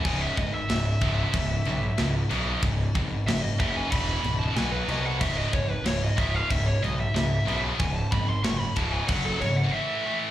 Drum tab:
CC |xxxxxxxx|xxxxxxxx|xxxxxxxx|xxxxxx--|
SD |--o---o-|--o---o-|--o---o-|--o-----|
BD |oo-oo---|oo-oo---|oo-oo---|oo-oo---|